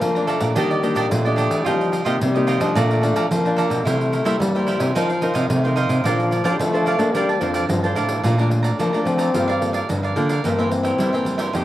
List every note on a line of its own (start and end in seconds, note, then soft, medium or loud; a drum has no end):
0.00 0.54 F2 medium
0.00 0.10 F3 medium
0.00 0.36 F3 loud
0.00 0.10 A3 medium
0.00 0.28 A#3 loud
0.00 0.11 D4 medium
0.00 pandeiro medium
0.15 0.52 F3 medium
0.15 0.52 A3 medium
0.15 0.53 D4 medium
0.15 0.27 D5 soft
0.15 0.28 F5 soft
0.15 0.28 A#5 soft
0.15 pandeiro soft
0.27 0.57 A3 medium
0.27 0.41 A4 medium
0.27 0.41 D5 medium
0.27 0.41 F5 medium
0.27 0.40 A#5 medium
0.27 pandeiro medium
0.40 0.53 A#2 medium
0.40 0.55 D5 soft
0.40 0.55 F5 soft
0.40 0.54 A#5 soft
0.40 pandeiro medium
0.55 0.91 D#3 loud
0.55 1.09 D#3 medium
0.55 1.12 G3 medium
0.55 0.80 A#3 medium
0.55 0.69 D4 medium
0.55 0.80 D4 medium
0.55 0.69 G4 medium
0.55 0.80 G4 medium
0.55 0.69 D5 medium
0.55 0.69 D#5 medium
0.55 pandeiro medium
0.70 0.82 G4 soft
0.70 0.83 D5 medium
0.70 0.83 D#5 soft
0.70 pandeiro soft
0.83 1.20 A#3 medium
0.83 0.94 D4 soft
0.83 1.20 D4 medium
0.83 0.95 G4 soft
0.83 1.21 G4 medium
0.83 0.96 D5 medium
0.83 0.95 D#5 medium
0.83 pandeiro medium
0.95 1.08 A#2 medium
0.95 1.05 D4 medium
0.95 1.06 G4 medium
0.95 1.06 D5 medium
0.95 1.06 D#5 medium
0.95 pandeiro medium
1.10 1.46 A#2 medium
1.10 1.64 A#2 medium
1.10 1.66 A3 loud
1.10 pandeiro medium
1.25 1.62 D4 medium
1.25 1.36 G4 soft
1.25 1.63 G4 medium
1.25 1.37 D5 soft
1.25 1.37 D#5 soft
1.25 pandeiro soft
1.36 1.64 D4 medium
1.36 1.64 G4 medium
1.36 1.65 D5 medium
1.36 1.65 D#5 medium
1.36 pandeiro medium
1.51 1.63 E3 medium
1.51 pandeiro medium
1.65 2.01 F3 loud
1.65 2.18 F3 medium
1.65 2.04 G3 loud
1.65 1.92 A#3 medium
1.65 1.92 D#4 medium
1.65 1.91 F4 medium
1.65 1.93 G4 medium
1.65 1.91 A#4 medium
1.65 1.92 C5 medium
1.65 1.93 D#5 medium
1.65 pandeiro medium
1.81 pandeiro soft
1.92 2.04 F4 soft
1.92 2.04 A#4 medium
1.92 2.05 C5 medium
1.92 2.05 D#5 soft
1.92 pandeiro medium
2.05 2.18 C3 medium
2.05 2.30 A#3 medium
2.05 2.30 D#4 medium
2.05 2.15 F4 medium
2.05 2.30 G4 medium
2.05 2.15 A#4 medium
2.05 2.16 C5 medium
2.05 2.16 D#5 medium
2.05 pandeiro medium
2.20 2.56 C3 medium
2.20 2.73 C3 medium
2.20 2.76 G3 loud
2.20 pandeiro medium
2.34 2.58 A#3 medium
2.34 2.58 D#4 medium
2.34 2.59 G4 medium
2.34 2.46 A#4 soft
2.34 2.47 C5 soft
2.34 2.47 D#5 soft
2.34 pandeiro soft
2.47 2.60 F4 medium
2.47 2.60 A#4 medium
2.47 2.60 C5 medium
2.47 2.59 D#5 medium
2.47 pandeiro medium
2.60 2.73 F3 medium
2.60 2.98 F3 medium
2.60 2.99 A3 medium
2.60 2.99 D4 medium
2.60 2.75 A#4 soft
2.60 2.74 C5 soft
2.60 2.74 D#5 soft
2.60 pandeiro medium
2.75 3.11 A#2 loud
2.75 3.28 A#2 medium
2.75 3.29 A3 loud
2.75 2.88 A4 medium
2.75 2.89 D5 medium
2.75 2.89 F5 medium
2.75 2.89 A#5 medium
2.75 pandeiro medium
2.90 3.01 D5 soft
2.90 3.02 F5 soft
2.90 3.03 A#5 medium
2.90 pandeiro soft
3.02 3.29 F3 medium
3.02 3.29 A3 medium
3.02 3.29 D4 medium
3.02 3.14 A4 soft
3.02 3.15 D5 soft
3.02 3.15 F5 medium
3.02 3.15 A#5 medium
3.02 pandeiro medium
3.16 3.28 F3 medium
3.16 3.25 A4 medium
3.16 3.25 D5 medium
3.16 3.26 F5 medium
3.16 3.26 A#5 medium
3.16 pandeiro medium
3.30 3.83 F2 medium
3.30 3.66 F3 loud
3.30 3.86 A#3 loud
3.30 pandeiro medium
3.45 3.82 F3 medium
3.45 3.82 D4 medium
3.45 3.56 D5 soft
3.45 3.57 F5 soft
3.45 3.57 A#5 soft
3.45 pandeiro soft
3.56 3.84 A4 medium
3.56 3.84 D5 medium
3.56 3.84 F5 medium
3.56 3.85 A#5 medium
3.56 pandeiro medium
3.70 3.82 B2 medium
3.70 pandeiro medium
3.85 4.20 C3 medium
3.85 4.38 C3 medium
3.85 4.22 G3 medium
3.85 4.41 A3 loud
3.85 4.11 E4 medium
3.85 4.23 E4 medium
3.85 4.12 A#4 medium
3.85 4.12 C5 medium
3.85 4.13 E5 medium
3.85 pandeiro medium
4.01 pandeiro soft
4.12 4.24 E4 soft
4.12 4.24 A#4 medium
4.12 4.25 C5 medium
4.12 4.25 E5 medium
4.12 pandeiro medium
4.24 4.49 G3 medium
4.24 4.38 G3 medium
4.24 4.49 A#3 medium
4.24 4.35 E4 medium
4.24 4.49 E4 medium
4.24 4.35 A#4 medium
4.24 4.35 C5 medium
4.24 4.35 E5 medium
4.24 pandeiro medium
4.39 4.92 G2 medium
4.39 4.96 G3 medium
4.39 4.75 G3 loud
4.39 pandeiro medium
4.55 4.91 G3 medium
4.55 4.91 A#3 medium
4.55 4.91 E4 medium
4.55 4.66 A#4 soft
4.55 4.67 C5 soft
4.55 4.67 E5 soft
4.55 pandeiro soft
4.67 4.80 E4 medium
4.67 4.80 A#4 medium
4.67 4.80 C5 medium
4.67 4.78 E5 medium
4.67 pandeiro medium
4.79 4.92 C3 medium
4.79 4.94 A#4 soft
4.79 4.94 C5 soft
4.79 4.93 E5 soft
4.79 pandeiro medium
4.94 5.51 F3 medium
4.94 5.30 F3 loud
4.94 5.48 F3 medium
4.94 5.12 C4 medium
4.94 5.08 D#4 medium
4.94 5.12 D#4 medium
4.94 5.08 A#4 medium
4.94 5.12 A#4 medium
4.94 5.08 C5 medium
4.94 5.08 F5 medium
4.94 pandeiro medium
5.09 5.21 A#4 soft
5.09 5.22 C5 soft
5.09 5.22 F5 medium
5.09 pandeiro soft
5.21 5.59 C4 medium
5.21 5.32 D#4 medium
5.21 5.60 D#4 medium
5.21 5.33 A#4 medium
5.21 5.60 A#4 medium
5.21 5.34 C5 medium
5.21 5.34 F5 medium
5.21 pandeiro medium
5.34 5.47 C3 medium
5.34 5.44 D#4 medium
5.34 5.44 A#4 medium
5.34 5.45 C5 medium
5.34 5.45 F5 medium
5.34 pandeiro medium
5.50 5.85 C3 loud
5.50 6.03 C3 medium
5.50 5.77 A3 medium
5.50 pandeiro medium
5.64 6.01 C4 medium
5.64 6.01 D#4 medium
5.64 5.75 A#4 soft
5.64 6.02 A#4 medium
5.64 5.76 C5 soft
5.64 5.76 F5 medium
5.64 pandeiro soft
5.76 6.03 D#4 medium
5.76 6.03 A#4 medium
5.76 6.04 C5 medium
5.76 6.04 F5 medium
5.76 pandeiro medium
5.89 6.02 C3 medium
5.89 pandeiro medium
6.04 6.39 A#2 medium
6.04 6.61 F3 loud
6.04 6.57 A#3 medium
6.04 6.31 D4 medium
6.04 6.31 A4 medium
6.04 6.30 A#4 medium
6.04 6.31 C5 medium
6.04 6.30 D5 medium
6.04 6.31 F5 medium
6.04 6.32 A5 medium
6.04 pandeiro medium
6.20 pandeiro soft
6.31 6.43 A#4 medium
6.31 6.43 D5 medium
6.31 6.44 F5 medium
6.31 6.44 A5 medium
6.31 pandeiro medium
6.44 6.57 F3 medium
6.44 6.68 D4 medium
6.44 6.69 A4 medium
6.44 6.54 A#4 medium
6.44 6.69 C5 medium
6.44 6.54 D5 medium
6.44 6.54 F5 medium
6.44 6.55 A5 medium
6.44 pandeiro medium
6.59 7.12 F3 medium
6.59 6.95 F3 loud
6.59 7.15 A3 loud
6.59 pandeiro medium
6.73 6.96 D4 medium
6.73 6.97 A4 medium
6.73 6.97 C5 medium
6.73 6.85 D5 soft
6.73 6.86 F5 soft
6.73 6.86 A5 soft
6.73 pandeiro soft
6.86 6.99 A#4 medium
6.86 7.00 D5 medium
6.86 6.99 F5 medium
6.86 6.97 A5 medium
6.86 pandeiro medium
6.98 7.35 A#3 medium
6.98 7.09 D4 medium
6.98 7.09 A4 medium
6.98 7.10 C5 medium
6.98 7.14 D5 soft
6.98 7.13 F5 soft
6.98 7.12 A5 soft
6.98 pandeiro medium
7.14 7.42 G3 loud
7.14 7.67 A#3 medium
7.14 7.30 D4 medium
7.14 7.31 A4 medium
7.14 7.27 A#4 medium
7.14 7.31 C5 medium
7.14 7.28 D5 medium
7.14 7.28 F5 medium
7.14 7.28 A5 medium
7.14 pandeiro medium
7.29 7.41 D5 soft
7.29 7.41 F5 soft
7.29 7.41 A5 soft
7.29 pandeiro soft
7.40 7.66 F2 medium
7.40 7.68 F3 medium
7.40 7.79 D4 medium
7.40 7.79 A4 medium
7.40 7.53 A#4 medium
7.40 7.79 C5 medium
7.40 7.53 D5 medium
7.40 7.54 F5 medium
7.40 7.54 A5 medium
7.40 pandeiro medium
7.54 7.64 A#4 medium
7.54 7.64 D5 medium
7.54 7.64 F5 medium
7.54 7.65 A5 medium
7.54 pandeiro medium
7.68 7.94 G2 medium
7.68 7.94 F3 medium
7.68 8.22 F3 medium
7.68 pandeiro medium
7.83 8.20 D4 medium
7.83 8.21 A4 medium
7.83 8.21 C5 medium
7.83 7.96 D5 soft
7.83 7.96 F5 soft
7.83 7.96 A5 soft
7.83 pandeiro soft
7.95 8.21 A2 medium
7.95 8.21 D3 medium
7.95 8.23 A#4 medium
7.95 8.23 D5 medium
7.95 8.24 F5 medium
7.95 8.24 A5 medium
7.95 pandeiro medium
8.09 pandeiro medium
8.23 8.71 A#2 loud
8.23 8.77 A#2 medium
8.23 8.34 A3 medium
8.23 8.34 D4 medium
8.23 8.34 F4 medium
8.23 8.37 A4 soft
8.23 8.37 D5 soft
8.23 8.38 F5 soft
8.23 8.37 A#5 soft
8.23 pandeiro medium
8.38 8.89 A3 medium
8.38 8.89 D4 medium
8.38 8.90 F4 medium
8.38 8.50 D5 medium
8.38 8.50 F5 medium
8.38 8.50 A#5 medium
8.38 pandeiro soft
8.51 muted cavaquinho stroke soft
8.51 pandeiro medium
8.63 8.78 D5 soft
8.63 8.77 F5 medium
8.63 8.77 A#5 medium
8.63 pandeiro medium
8.79 8.91 F3 medium
8.79 9.32 F3 medium
8.79 9.05 A#3 medium
8.79 8.92 A4 soft
8.79 8.92 D5 soft
8.79 8.92 F5 soft
8.79 8.92 A#5 medium
8.79 pandeiro medium
8.93 9.31 A3 medium
8.93 9.30 D4 medium
8.93 9.31 F4 medium
8.93 9.19 D5 medium
8.93 9.18 F5 medium
8.93 9.17 A#5 medium
8.93 pandeiro soft
9.05 9.29 F3 medium
9.05 9.84 C4 medium
9.05 pandeiro medium
9.18 9.33 D5 medium
9.18 9.33 F5 medium
9.18 9.32 A#5 medium
9.18 pandeiro medium
9.34 9.81 G2 medium
9.34 9.86 G3 medium
9.34 9.50 A#3 medium
9.34 9.51 F4 medium
9.34 9.47 G4 soft
9.34 9.51 A4 medium
9.34 9.47 A#4 soft
9.34 9.48 D5 soft
9.34 9.46 F5 medium
9.34 pandeiro medium
9.48 9.74 A#4 soft
9.48 9.73 D5 medium
9.48 9.72 F5 medium
9.48 pandeiro soft
9.61 9.97 A#3 medium
9.61 9.97 F4 medium
9.61 9.97 A4 medium
9.61 pandeiro medium
9.73 9.88 A#4 medium
9.73 9.88 D5 medium
9.73 9.87 F5 medium
9.73 pandeiro medium
9.89 10.12 G2 medium
9.89 10.42 D3 medium
9.89 muted cavaquinho stroke soft
9.89 pandeiro medium
10.03 10.15 A#4 medium
10.03 10.16 D5 medium
10.03 10.16 F5 medium
10.03 pandeiro soft
10.16 10.40 D3 medium
10.16 10.34 A#3 medium
10.16 10.34 F4 medium
10.16 10.29 G4 soft
10.16 10.34 A4 medium
10.16 10.29 A#4 soft
10.16 10.29 D5 soft
10.16 10.28 F5 medium
10.16 pandeiro medium
10.29 10.44 A#4 medium
10.29 10.43 D5 medium
10.29 10.42 F5 medium
10.29 pandeiro medium
10.44 10.96 G2 medium
10.44 10.91 G2 medium
10.44 10.52 E3 medium
10.44 10.53 A#3 medium
10.44 10.72 A#3 medium
10.44 10.53 C4 medium
10.44 10.57 E4 medium
10.44 10.57 A#4 soft
10.44 10.58 C5 soft
10.44 10.57 E5 medium
10.44 pandeiro medium
10.58 11.09 E3 medium
10.58 11.09 A#3 medium
10.58 11.09 C4 medium
10.58 10.70 A#4 soft
10.58 10.71 C5 medium
10.58 10.71 E5 medium
10.58 pandeiro soft
10.71 11.53 C4 loud
10.71 muted cavaquinho stroke soft
10.71 pandeiro medium
10.83 10.98 A#4 medium
10.83 10.97 C5 medium
10.83 10.97 E5 medium
10.83 pandeiro medium
10.98 11.51 G2 medium
10.98 11.10 G3 medium
10.98 11.12 E4 medium
10.98 11.12 A#4 soft
10.98 11.12 C5 soft
10.98 11.12 E5 medium
10.98 pandeiro medium
11.13 11.50 E3 medium
11.13 11.50 A#3 medium
11.13 11.50 C4 medium
11.13 11.39 A#4 medium
11.13 11.38 C5 medium
11.13 11.37 E5 medium
11.13 pandeiro soft
11.25 11.49 G3 medium
11.25 pandeiro medium
11.38 11.52 A#4 medium
11.38 11.52 C5 medium
11.38 11.52 E5 medium
11.38 pandeiro medium
11.53 11.64 F2 medium
11.53 11.64 F3 medium
11.53 11.64 A#3 medium
11.53 11.64 D#4 medium
11.53 11.64 F4 soft
11.53 11.64 G4 medium
11.53 11.64 A#4 medium
11.53 11.64 C5 medium
11.53 11.64 D#5 medium
11.53 pandeiro medium